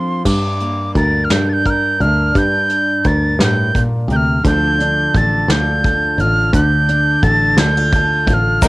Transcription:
Already playing: steel-string acoustic guitar F3 C4 F4 A4, tin whistle C6
0.25 picked electric bass G2, steel-string acoustic guitar G2, tin whistle D6, kick, crash
0.60 steel-string acoustic guitar A#3, closed hi-hat
0.95 picked electric bass D2, steel-string acoustic guitar A#4, tin whistle A6, kick, closed hi-hat
1.24 tin whistle F6
1.30 picked electric bass G2, steel-string acoustic guitar D4, tin whistle G6, snare, closed hi-hat
1.49 tin whistle G6 A6
1.66 steel-string acoustic guitar A#4, tin whistle F6, kick, closed hi-hat
1.70 tin whistle G6
2.00 picked electric bass D2, steel-string acoustic guitar D4, tin whistle F6, closed hi-hat
2.35 steel-string acoustic guitar G2, picked electric bass G2, tin whistle G6, kick, closed hi-hat
2.69 closed hi-hat
3.04 picked electric bass D2, steel-string acoustic guitar A#4, tin whistle A6, kick, closed hi-hat
3.39 picked electric bass G2, steel-string acoustic guitar A2, tin whistle G6, snare, closed hi-hat
3.75 steel-string acoustic guitar A#2, kick, closed hi-hat
4.08 picked electric bass D2, steel-string acoustic guitar C3, closed hi-hat
4.13 tin whistle F6 G6
4.44 picked electric bass D2, steel-string acoustic guitar D3 F3 D4 F4 A4, tin whistle G6, kick, closed hi-hat
4.80 steel-string acoustic guitar D4, closed hi-hat
5.14 picked electric bass A1, steel-string acoustic guitar A4, tin whistle A6, kick, closed hi-hat
5.48 picked electric bass D2, steel-string acoustic guitar F4, tin whistle G6, snare, closed hi-hat
5.84 steel-string acoustic guitar A4, kick, closed hi-hat
6.18 picked electric bass A1, steel-string acoustic guitar F4, tin whistle F6, closed hi-hat
6.53 picked electric bass D2, steel-string acoustic guitar D3, tin whistle G6, kick, closed hi-hat
6.88 steel-string acoustic guitar D4, closed hi-hat
7.23 picked electric bass A1, steel-string acoustic guitar A4, tin whistle A6, kick, closed hi-hat
7.57 picked electric bass D2, steel-string acoustic guitar D4, tin whistle G6, snare, closed hi-hat
7.77 steel-string acoustic guitar F4
7.93 steel-string acoustic guitar A4, kick, closed hi-hat
8.27 picked electric bass A1, steel-string acoustic guitar F4, tin whistle G6, kick, closed hi-hat
8.34 tin whistle F6
8.61 picked electric bass D#2, steel-string acoustic guitar D#3 G3 A#3 D#4 A#4, five-string banjo A#5, tin whistle G6, kick, closed hi-hat, shaker

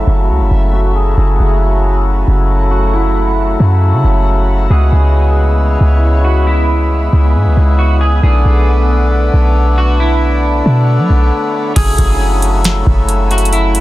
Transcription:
Already playing: harmonium C#3 F#3 A3 E4, synth texture A3 F#4 E5, clean electric guitar E4
0.07 808-style bass F#1
0.29 808-style bass C#2
0.40 808-style bass F#1
0.51 808-style bass F#1
0.73 clean electric guitar F#4
0.95 clean electric guitar G#4
1.17 808-style bass F#1, clean electric guitar G#4, synth texture F#5
1.39 808-style bass F#1
2.28 808-style bass F#1
2.71 clean electric guitar F#4
2.93 clean electric guitar E4
3.60 808-style bass F#2
3.93 808-style bass C#3
4.04 808-style bass F#1
4.70 808-style bass C#2, harmonium G#3 B3, synth texture B3 E4, clean electric guitar G#4
4.92 808-style bass C#2
5.81 808-style bass C#2
6.24 clean electric guitar F#4
6.47 clean electric guitar E4
7.13 808-style bass C#2
7.35 808-style bass G#2
7.46 808-style bass C#2
7.57 808-style bass C#2
7.79 clean electric guitar F#4
8.01 clean electric guitar G#4
8.23 808-style bass B1, harmonium D3 A3 D4, synth texture A3 D4 C#5, clean electric guitar G#4
8.45 808-style bass B1
9.33 808-style bass B1
9.78 clean electric guitar F#4
10.00 clean electric guitar E4
10.66 808-style bass B2
10.99 808-style bass F#3
11.10 808-style bass B1
11.76 808-style bass F#1, harmonium C#3 F#3 A3 E4, synth texture A3 F#4 E5, clean electric guitar G#4, kick, closed hi-hat, crash
11.98 808-style bass F#1, kick, closed hi-hat
12.42 closed hi-hat
12.64 snare, closed hi-hat
12.87 808-style bass F#1, kick
13.09 closed hi-hat
13.31 clean electric guitar F#4, closed hi-hat
13.38 closed hi-hat
13.45 closed hi-hat
13.53 clean electric guitar E4, closed hi-hat
13.75 closed hi-hat

